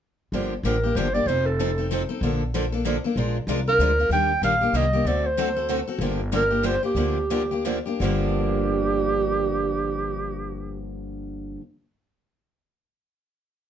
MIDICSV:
0, 0, Header, 1, 4, 480
1, 0, Start_track
1, 0, Key_signature, -2, "minor"
1, 0, Tempo, 314961
1, 498, Time_signature, 3, 2, 24, 8
1, 9617, Tempo, 328048
1, 11057, Tempo, 355450
1, 12017, Tempo, 371058
1, 19382, End_track
2, 0, Start_track
2, 0, Title_t, "Clarinet"
2, 0, Program_c, 0, 71
2, 1009, Note_on_c, 0, 70, 76
2, 1462, Note_on_c, 0, 72, 86
2, 1485, Note_off_c, 0, 70, 0
2, 1735, Note_on_c, 0, 74, 90
2, 1758, Note_off_c, 0, 72, 0
2, 1937, Note_on_c, 0, 72, 89
2, 1960, Note_off_c, 0, 74, 0
2, 2220, Note_on_c, 0, 69, 76
2, 2243, Note_off_c, 0, 72, 0
2, 2900, Note_off_c, 0, 69, 0
2, 5613, Note_on_c, 0, 70, 95
2, 6229, Note_off_c, 0, 70, 0
2, 6289, Note_on_c, 0, 79, 97
2, 6722, Note_off_c, 0, 79, 0
2, 6766, Note_on_c, 0, 77, 91
2, 7256, Note_on_c, 0, 75, 89
2, 7279, Note_off_c, 0, 77, 0
2, 7729, Note_on_c, 0, 74, 82
2, 7752, Note_off_c, 0, 75, 0
2, 8018, Note_on_c, 0, 72, 87
2, 8040, Note_off_c, 0, 74, 0
2, 8958, Note_off_c, 0, 72, 0
2, 9670, Note_on_c, 0, 70, 90
2, 10125, Note_on_c, 0, 72, 96
2, 10147, Note_off_c, 0, 70, 0
2, 10386, Note_off_c, 0, 72, 0
2, 10406, Note_on_c, 0, 67, 84
2, 11778, Note_off_c, 0, 67, 0
2, 12036, Note_on_c, 0, 67, 94
2, 15891, Note_off_c, 0, 67, 0
2, 19382, End_track
3, 0, Start_track
3, 0, Title_t, "Steel-string acoustic guitar"
3, 0, Program_c, 1, 25
3, 507, Note_on_c, 1, 50, 52
3, 512, Note_on_c, 1, 53, 60
3, 519, Note_on_c, 1, 58, 52
3, 521, Note_on_c, 1, 62, 54
3, 528, Note_on_c, 1, 67, 62
3, 800, Note_off_c, 1, 50, 0
3, 803, Note_off_c, 1, 53, 0
3, 806, Note_off_c, 1, 58, 0
3, 807, Note_off_c, 1, 62, 0
3, 810, Note_off_c, 1, 67, 0
3, 986, Note_on_c, 1, 50, 78
3, 990, Note_on_c, 1, 53, 73
3, 990, Note_on_c, 1, 58, 80
3, 995, Note_on_c, 1, 62, 77
3, 997, Note_on_c, 1, 67, 80
3, 1144, Note_off_c, 1, 50, 0
3, 1145, Note_off_c, 1, 53, 0
3, 1145, Note_off_c, 1, 58, 0
3, 1148, Note_off_c, 1, 62, 0
3, 1149, Note_off_c, 1, 67, 0
3, 1272, Note_on_c, 1, 67, 50
3, 1285, Note_on_c, 1, 62, 54
3, 1301, Note_on_c, 1, 58, 45
3, 1457, Note_off_c, 1, 62, 0
3, 1457, Note_off_c, 1, 67, 0
3, 1458, Note_off_c, 1, 58, 0
3, 1468, Note_on_c, 1, 50, 73
3, 1472, Note_on_c, 1, 53, 77
3, 1475, Note_on_c, 1, 62, 83
3, 1476, Note_on_c, 1, 58, 83
3, 1483, Note_on_c, 1, 67, 76
3, 1625, Note_off_c, 1, 50, 0
3, 1627, Note_off_c, 1, 53, 0
3, 1628, Note_off_c, 1, 62, 0
3, 1629, Note_off_c, 1, 58, 0
3, 1632, Note_off_c, 1, 67, 0
3, 1745, Note_on_c, 1, 67, 55
3, 1758, Note_on_c, 1, 62, 48
3, 1768, Note_on_c, 1, 58, 44
3, 1934, Note_off_c, 1, 67, 0
3, 1941, Note_off_c, 1, 62, 0
3, 1946, Note_off_c, 1, 58, 0
3, 1949, Note_on_c, 1, 53, 47
3, 1958, Note_on_c, 1, 63, 57
3, 1960, Note_on_c, 1, 60, 60
3, 1963, Note_on_c, 1, 69, 61
3, 2242, Note_off_c, 1, 53, 0
3, 2246, Note_off_c, 1, 63, 0
3, 2247, Note_off_c, 1, 60, 0
3, 2249, Note_off_c, 1, 69, 0
3, 2430, Note_on_c, 1, 53, 76
3, 2439, Note_on_c, 1, 60, 75
3, 2443, Note_on_c, 1, 63, 83
3, 2444, Note_on_c, 1, 69, 85
3, 2586, Note_off_c, 1, 53, 0
3, 2590, Note_off_c, 1, 60, 0
3, 2593, Note_off_c, 1, 63, 0
3, 2593, Note_off_c, 1, 69, 0
3, 2710, Note_on_c, 1, 69, 56
3, 2725, Note_on_c, 1, 63, 44
3, 2734, Note_on_c, 1, 60, 45
3, 2897, Note_off_c, 1, 69, 0
3, 2898, Note_off_c, 1, 63, 0
3, 2899, Note_off_c, 1, 60, 0
3, 2908, Note_on_c, 1, 53, 84
3, 2917, Note_on_c, 1, 63, 82
3, 2918, Note_on_c, 1, 60, 77
3, 2927, Note_on_c, 1, 69, 74
3, 3065, Note_off_c, 1, 53, 0
3, 3069, Note_off_c, 1, 63, 0
3, 3070, Note_off_c, 1, 60, 0
3, 3075, Note_off_c, 1, 69, 0
3, 3184, Note_on_c, 1, 69, 60
3, 3202, Note_on_c, 1, 63, 52
3, 3209, Note_on_c, 1, 60, 45
3, 3374, Note_off_c, 1, 69, 0
3, 3383, Note_off_c, 1, 63, 0
3, 3386, Note_off_c, 1, 60, 0
3, 3394, Note_on_c, 1, 50, 60
3, 3402, Note_on_c, 1, 53, 62
3, 3406, Note_on_c, 1, 62, 63
3, 3409, Note_on_c, 1, 58, 67
3, 3411, Note_on_c, 1, 69, 67
3, 3684, Note_off_c, 1, 50, 0
3, 3689, Note_off_c, 1, 53, 0
3, 3691, Note_off_c, 1, 62, 0
3, 3692, Note_off_c, 1, 58, 0
3, 3693, Note_off_c, 1, 69, 0
3, 3873, Note_on_c, 1, 50, 79
3, 3881, Note_on_c, 1, 53, 80
3, 3883, Note_on_c, 1, 58, 78
3, 3890, Note_on_c, 1, 62, 86
3, 3891, Note_on_c, 1, 69, 77
3, 4028, Note_off_c, 1, 50, 0
3, 4032, Note_off_c, 1, 53, 0
3, 4033, Note_off_c, 1, 58, 0
3, 4036, Note_off_c, 1, 62, 0
3, 4037, Note_off_c, 1, 69, 0
3, 4151, Note_on_c, 1, 69, 59
3, 4170, Note_on_c, 1, 62, 52
3, 4177, Note_on_c, 1, 58, 50
3, 4330, Note_off_c, 1, 58, 0
3, 4332, Note_off_c, 1, 62, 0
3, 4337, Note_off_c, 1, 69, 0
3, 4339, Note_on_c, 1, 50, 74
3, 4347, Note_on_c, 1, 53, 63
3, 4348, Note_on_c, 1, 58, 87
3, 4350, Note_on_c, 1, 62, 87
3, 4356, Note_on_c, 1, 69, 84
3, 4500, Note_off_c, 1, 50, 0
3, 4505, Note_off_c, 1, 53, 0
3, 4505, Note_off_c, 1, 58, 0
3, 4506, Note_off_c, 1, 62, 0
3, 4509, Note_off_c, 1, 69, 0
3, 4636, Note_on_c, 1, 69, 55
3, 4647, Note_on_c, 1, 62, 50
3, 4657, Note_on_c, 1, 58, 50
3, 4818, Note_off_c, 1, 62, 0
3, 4820, Note_off_c, 1, 69, 0
3, 4830, Note_off_c, 1, 58, 0
3, 4833, Note_on_c, 1, 53, 53
3, 4835, Note_on_c, 1, 56, 54
3, 4837, Note_on_c, 1, 62, 62
3, 4847, Note_on_c, 1, 70, 70
3, 4848, Note_on_c, 1, 65, 60
3, 5124, Note_off_c, 1, 53, 0
3, 5125, Note_off_c, 1, 56, 0
3, 5126, Note_off_c, 1, 62, 0
3, 5131, Note_off_c, 1, 65, 0
3, 5131, Note_off_c, 1, 70, 0
3, 5313, Note_on_c, 1, 53, 73
3, 5316, Note_on_c, 1, 56, 76
3, 5320, Note_on_c, 1, 62, 75
3, 5327, Note_on_c, 1, 65, 85
3, 5328, Note_on_c, 1, 70, 87
3, 5467, Note_off_c, 1, 53, 0
3, 5469, Note_off_c, 1, 56, 0
3, 5471, Note_off_c, 1, 62, 0
3, 5474, Note_off_c, 1, 65, 0
3, 5475, Note_off_c, 1, 70, 0
3, 5601, Note_on_c, 1, 70, 51
3, 5615, Note_on_c, 1, 65, 46
3, 5625, Note_on_c, 1, 62, 43
3, 5782, Note_off_c, 1, 70, 0
3, 5788, Note_off_c, 1, 62, 0
3, 5789, Note_off_c, 1, 65, 0
3, 5798, Note_on_c, 1, 53, 72
3, 5801, Note_on_c, 1, 56, 72
3, 5806, Note_on_c, 1, 62, 68
3, 5809, Note_on_c, 1, 65, 77
3, 5811, Note_on_c, 1, 70, 79
3, 5950, Note_off_c, 1, 53, 0
3, 5951, Note_off_c, 1, 56, 0
3, 5954, Note_off_c, 1, 62, 0
3, 5955, Note_off_c, 1, 65, 0
3, 5956, Note_off_c, 1, 70, 0
3, 6085, Note_on_c, 1, 70, 49
3, 6093, Note_on_c, 1, 65, 47
3, 6105, Note_on_c, 1, 62, 43
3, 6264, Note_off_c, 1, 70, 0
3, 6268, Note_off_c, 1, 65, 0
3, 6274, Note_off_c, 1, 62, 0
3, 6277, Note_on_c, 1, 51, 59
3, 6281, Note_on_c, 1, 55, 56
3, 6288, Note_on_c, 1, 58, 60
3, 6288, Note_on_c, 1, 67, 61
3, 6289, Note_on_c, 1, 62, 65
3, 6565, Note_off_c, 1, 51, 0
3, 6567, Note_off_c, 1, 55, 0
3, 6571, Note_off_c, 1, 58, 0
3, 6571, Note_off_c, 1, 62, 0
3, 6571, Note_off_c, 1, 67, 0
3, 6750, Note_on_c, 1, 51, 81
3, 6751, Note_on_c, 1, 55, 72
3, 6757, Note_on_c, 1, 58, 87
3, 6757, Note_on_c, 1, 62, 82
3, 6761, Note_on_c, 1, 67, 81
3, 6905, Note_off_c, 1, 51, 0
3, 6906, Note_off_c, 1, 55, 0
3, 6909, Note_off_c, 1, 58, 0
3, 6909, Note_off_c, 1, 62, 0
3, 6911, Note_off_c, 1, 67, 0
3, 7025, Note_on_c, 1, 67, 51
3, 7042, Note_on_c, 1, 62, 51
3, 7056, Note_on_c, 1, 58, 49
3, 7213, Note_off_c, 1, 67, 0
3, 7221, Note_off_c, 1, 58, 0
3, 7222, Note_off_c, 1, 62, 0
3, 7232, Note_on_c, 1, 51, 73
3, 7233, Note_on_c, 1, 55, 72
3, 7240, Note_on_c, 1, 58, 76
3, 7242, Note_on_c, 1, 62, 71
3, 7247, Note_on_c, 1, 67, 80
3, 7386, Note_off_c, 1, 51, 0
3, 7387, Note_off_c, 1, 55, 0
3, 7390, Note_off_c, 1, 58, 0
3, 7391, Note_off_c, 1, 62, 0
3, 7393, Note_off_c, 1, 67, 0
3, 7516, Note_on_c, 1, 67, 58
3, 7538, Note_on_c, 1, 62, 45
3, 7546, Note_on_c, 1, 58, 49
3, 7699, Note_off_c, 1, 67, 0
3, 7709, Note_off_c, 1, 62, 0
3, 7714, Note_off_c, 1, 58, 0
3, 7717, Note_on_c, 1, 50, 59
3, 7721, Note_on_c, 1, 57, 59
3, 7724, Note_on_c, 1, 60, 64
3, 7724, Note_on_c, 1, 66, 62
3, 7730, Note_on_c, 1, 69, 65
3, 8004, Note_off_c, 1, 50, 0
3, 8006, Note_off_c, 1, 57, 0
3, 8008, Note_off_c, 1, 60, 0
3, 8008, Note_off_c, 1, 66, 0
3, 8011, Note_off_c, 1, 69, 0
3, 8189, Note_on_c, 1, 50, 77
3, 8197, Note_on_c, 1, 57, 80
3, 8198, Note_on_c, 1, 60, 89
3, 8207, Note_on_c, 1, 66, 83
3, 8208, Note_on_c, 1, 69, 82
3, 8344, Note_off_c, 1, 50, 0
3, 8348, Note_off_c, 1, 57, 0
3, 8348, Note_off_c, 1, 60, 0
3, 8353, Note_off_c, 1, 66, 0
3, 8354, Note_off_c, 1, 69, 0
3, 8480, Note_on_c, 1, 69, 54
3, 8497, Note_on_c, 1, 66, 51
3, 8508, Note_on_c, 1, 60, 41
3, 8660, Note_off_c, 1, 69, 0
3, 8664, Note_off_c, 1, 60, 0
3, 8669, Note_off_c, 1, 66, 0
3, 8674, Note_on_c, 1, 50, 74
3, 8677, Note_on_c, 1, 57, 69
3, 8682, Note_on_c, 1, 60, 71
3, 8686, Note_on_c, 1, 66, 74
3, 8690, Note_on_c, 1, 69, 81
3, 8826, Note_off_c, 1, 50, 0
3, 8828, Note_off_c, 1, 57, 0
3, 8831, Note_off_c, 1, 60, 0
3, 8832, Note_off_c, 1, 66, 0
3, 8834, Note_off_c, 1, 69, 0
3, 8954, Note_on_c, 1, 69, 54
3, 8968, Note_on_c, 1, 66, 53
3, 8978, Note_on_c, 1, 60, 44
3, 9137, Note_off_c, 1, 69, 0
3, 9144, Note_off_c, 1, 66, 0
3, 9149, Note_off_c, 1, 60, 0
3, 9158, Note_on_c, 1, 50, 59
3, 9162, Note_on_c, 1, 53, 57
3, 9165, Note_on_c, 1, 58, 58
3, 9170, Note_on_c, 1, 62, 64
3, 9172, Note_on_c, 1, 67, 72
3, 9445, Note_off_c, 1, 50, 0
3, 9447, Note_off_c, 1, 53, 0
3, 9449, Note_off_c, 1, 58, 0
3, 9451, Note_off_c, 1, 62, 0
3, 9452, Note_off_c, 1, 67, 0
3, 9632, Note_on_c, 1, 53, 81
3, 9635, Note_on_c, 1, 50, 78
3, 9639, Note_on_c, 1, 58, 89
3, 9644, Note_on_c, 1, 62, 82
3, 9645, Note_on_c, 1, 67, 85
3, 9782, Note_off_c, 1, 53, 0
3, 9783, Note_off_c, 1, 50, 0
3, 9785, Note_off_c, 1, 58, 0
3, 9787, Note_off_c, 1, 62, 0
3, 9788, Note_off_c, 1, 67, 0
3, 9903, Note_on_c, 1, 67, 56
3, 9915, Note_on_c, 1, 62, 49
3, 9925, Note_on_c, 1, 58, 46
3, 10082, Note_off_c, 1, 62, 0
3, 10084, Note_off_c, 1, 58, 0
3, 10085, Note_off_c, 1, 67, 0
3, 10093, Note_on_c, 1, 50, 75
3, 10097, Note_on_c, 1, 53, 71
3, 10100, Note_on_c, 1, 62, 81
3, 10101, Note_on_c, 1, 58, 69
3, 10106, Note_on_c, 1, 67, 79
3, 10249, Note_off_c, 1, 50, 0
3, 10251, Note_off_c, 1, 53, 0
3, 10253, Note_off_c, 1, 58, 0
3, 10253, Note_off_c, 1, 62, 0
3, 10256, Note_off_c, 1, 67, 0
3, 10373, Note_on_c, 1, 67, 52
3, 10393, Note_on_c, 1, 62, 47
3, 10398, Note_on_c, 1, 58, 39
3, 10562, Note_off_c, 1, 67, 0
3, 10567, Note_off_c, 1, 58, 0
3, 10571, Note_off_c, 1, 62, 0
3, 10577, Note_on_c, 1, 50, 58
3, 10585, Note_on_c, 1, 53, 60
3, 10585, Note_on_c, 1, 58, 66
3, 10588, Note_on_c, 1, 62, 63
3, 10591, Note_on_c, 1, 67, 60
3, 10875, Note_off_c, 1, 50, 0
3, 10879, Note_off_c, 1, 53, 0
3, 10879, Note_off_c, 1, 58, 0
3, 10880, Note_off_c, 1, 62, 0
3, 10882, Note_off_c, 1, 67, 0
3, 11068, Note_on_c, 1, 50, 76
3, 11075, Note_on_c, 1, 58, 82
3, 11076, Note_on_c, 1, 53, 77
3, 11079, Note_on_c, 1, 62, 89
3, 11079, Note_on_c, 1, 67, 90
3, 11219, Note_off_c, 1, 50, 0
3, 11222, Note_off_c, 1, 58, 0
3, 11223, Note_off_c, 1, 53, 0
3, 11224, Note_off_c, 1, 62, 0
3, 11224, Note_off_c, 1, 67, 0
3, 11348, Note_on_c, 1, 67, 52
3, 11364, Note_on_c, 1, 62, 50
3, 11375, Note_on_c, 1, 58, 41
3, 11524, Note_off_c, 1, 58, 0
3, 11529, Note_off_c, 1, 62, 0
3, 11529, Note_off_c, 1, 67, 0
3, 11534, Note_on_c, 1, 50, 77
3, 11537, Note_on_c, 1, 53, 77
3, 11541, Note_on_c, 1, 58, 65
3, 11543, Note_on_c, 1, 67, 76
3, 11545, Note_on_c, 1, 62, 73
3, 11693, Note_off_c, 1, 50, 0
3, 11695, Note_off_c, 1, 53, 0
3, 11697, Note_off_c, 1, 58, 0
3, 11698, Note_off_c, 1, 67, 0
3, 11699, Note_off_c, 1, 62, 0
3, 11815, Note_on_c, 1, 67, 50
3, 11830, Note_on_c, 1, 62, 50
3, 11843, Note_on_c, 1, 58, 40
3, 12011, Note_off_c, 1, 67, 0
3, 12019, Note_off_c, 1, 62, 0
3, 12025, Note_off_c, 1, 58, 0
3, 12027, Note_on_c, 1, 43, 65
3, 12030, Note_on_c, 1, 50, 78
3, 12039, Note_on_c, 1, 53, 64
3, 12046, Note_on_c, 1, 58, 68
3, 12059, Note_on_c, 1, 62, 71
3, 12060, Note_on_c, 1, 67, 77
3, 16670, Note_off_c, 1, 43, 0
3, 16673, Note_off_c, 1, 50, 0
3, 16682, Note_off_c, 1, 53, 0
3, 16689, Note_off_c, 1, 58, 0
3, 16703, Note_off_c, 1, 62, 0
3, 16703, Note_off_c, 1, 67, 0
3, 19382, End_track
4, 0, Start_track
4, 0, Title_t, "Upright bass"
4, 0, Program_c, 2, 32
4, 489, Note_on_c, 2, 31, 70
4, 877, Note_off_c, 2, 31, 0
4, 967, Note_on_c, 2, 33, 81
4, 1381, Note_off_c, 2, 33, 0
4, 1447, Note_on_c, 2, 31, 84
4, 1861, Note_off_c, 2, 31, 0
4, 1919, Note_on_c, 2, 29, 82
4, 3080, Note_off_c, 2, 29, 0
4, 3369, Note_on_c, 2, 34, 86
4, 4526, Note_off_c, 2, 34, 0
4, 4812, Note_on_c, 2, 34, 81
4, 5200, Note_off_c, 2, 34, 0
4, 5288, Note_on_c, 2, 36, 79
4, 5701, Note_off_c, 2, 36, 0
4, 5772, Note_on_c, 2, 38, 76
4, 6183, Note_off_c, 2, 38, 0
4, 6241, Note_on_c, 2, 39, 82
4, 6632, Note_off_c, 2, 39, 0
4, 6734, Note_on_c, 2, 34, 76
4, 7144, Note_off_c, 2, 34, 0
4, 7209, Note_on_c, 2, 36, 73
4, 7621, Note_off_c, 2, 36, 0
4, 7690, Note_on_c, 2, 38, 81
4, 8845, Note_off_c, 2, 38, 0
4, 9123, Note_on_c, 2, 31, 90
4, 10276, Note_off_c, 2, 31, 0
4, 10552, Note_on_c, 2, 38, 75
4, 11728, Note_off_c, 2, 38, 0
4, 12012, Note_on_c, 2, 31, 83
4, 16604, Note_off_c, 2, 31, 0
4, 19382, End_track
0, 0, End_of_file